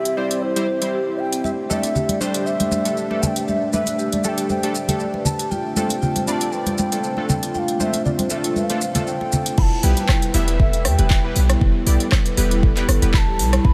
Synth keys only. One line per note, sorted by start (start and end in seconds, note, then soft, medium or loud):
0.17 0.53 G3 medium
0.17 0.53 C4 medium
0.17 0.53 E4 medium
0.17 0.53 G4 medium
0.17 0.53 C5 medium
0.56 0.67 G3 medium
0.56 0.67 C4 medium
0.56 0.67 E4 medium
0.56 0.67 G4 medium
0.56 0.67 C5 loud
0.82 0.99 G3 medium
0.82 0.99 C4 medium
0.82 0.99 E4 medium
0.82 0.99 G4 medium
0.82 0.99 C5 medium
1.70 1.88 G3 medium
1.70 1.88 A3 medium
1.70 1.88 D4 medium
1.70 1.88 G4 medium
1.70 1.88 A4 medium
2.21 2.82 G3 loud
2.21 2.82 A3 medium
2.21 2.82 D4 medium
2.21 2.82 G4 medium
2.21 2.82 C5 loud
2.85 3.07 G3 medium
2.85 3.07 A3 medium
2.85 3.07 D4 medium
2.85 3.07 G4 medium
2.85 3.07 A4 medium
3.11 3.28 G3 medium
3.11 3.28 A3 medium
3.11 3.28 D4 medium
3.11 3.28 G4 medium
3.11 3.28 A4 medium
3.73 3.92 G3 medium
3.73 3.92 A3 medium
3.73 3.92 D4 medium
3.73 3.92 G4 medium
3.73 3.92 B4 medium
4.24 4.60 G3 medium
4.24 4.60 A3 medium
4.24 4.60 D4 medium
4.24 4.60 G4 medium
4.24 4.60 A4 medium
4.63 4.74 G3 medium
4.63 4.74 A3 medium
4.63 4.74 D4 medium
4.63 4.74 G4 medium
4.63 4.74 A4 loud
4.89 5.06 G3 medium
4.89 5.06 A3 medium
4.89 5.06 D4 medium
4.89 5.06 G4 medium
4.89 5.06 A4 medium
5.77 5.95 A3 medium
5.77 5.95 C4 medium
5.77 5.95 D4 medium
5.77 5.95 F4 medium
5.77 5.95 A4 medium
6.28 6.89 A3 medium
6.28 6.89 C4 medium
6.28 6.89 D4 medium
6.28 6.89 F4 medium
6.28 6.89 D5 loud
6.92 7.14 A3 medium
6.92 7.14 C4 medium
6.92 7.14 D4 medium
6.92 7.14 F4 medium
6.92 7.14 A4 medium
7.18 7.35 A3 medium
7.18 7.35 C4 medium
7.18 7.35 D4 medium
7.18 7.35 F4 medium
7.18 7.35 A4 medium
7.80 7.98 A3 medium
7.80 7.98 C4 medium
7.80 7.98 D4 medium
7.80 7.98 F4 medium
7.80 7.98 C5 medium
8.31 8.67 A3 medium
8.31 8.67 C4 medium
8.31 8.67 D4 medium
8.31 8.67 F4 medium
8.31 8.67 A4 medium
8.70 8.80 A3 medium
8.70 8.80 C4 medium
8.70 8.80 D4 medium
8.70 8.80 F4 medium
8.70 8.80 A4 loud
8.95 9.13 A3 medium
8.95 9.13 C4 medium
8.95 9.13 D4 medium
8.95 9.13 F4 medium
8.95 9.13 A4 medium
9.83 10.02 G3 medium
9.83 10.02 B3 medium
9.83 10.02 E4 medium
9.83 10.02 G4 medium
9.83 10.02 B4 medium
10.34 10.96 G3 loud
10.34 10.96 B3 medium
10.34 10.96 E4 medium
10.34 10.95 G4 medium
10.34 10.96 E5 loud
10.99 11.21 G3 medium
10.99 11.21 B3 medium
10.99 11.21 E4 medium
10.99 11.21 G4 medium
10.99 11.21 B4 medium
11.24 11.42 G3 medium
11.24 11.41 B3 medium
11.24 11.42 E4 medium
11.24 11.41 G4 medium
11.24 11.41 B4 medium
11.87 12.05 G3 medium
11.87 12.05 B3 medium
11.87 12.05 E4 medium
11.87 12.05 G4 medium
11.87 12.05 D5 medium
12.37 12.73 G3 medium
12.37 12.73 B3 medium
12.37 12.73 E4 medium
12.37 12.73 G4 medium
12.37 12.73 B4 loud
12.77 12.87 G3 loud
12.77 12.87 B3 medium
12.77 12.87 E4 medium
12.77 12.87 G4 medium
12.77 12.87 B4 loud
13.02 13.19 G3 medium
13.02 13.19 B3 medium
13.02 13.19 E4 medium
13.02 13.19 G4 medium
13.02 13.19 B4 medium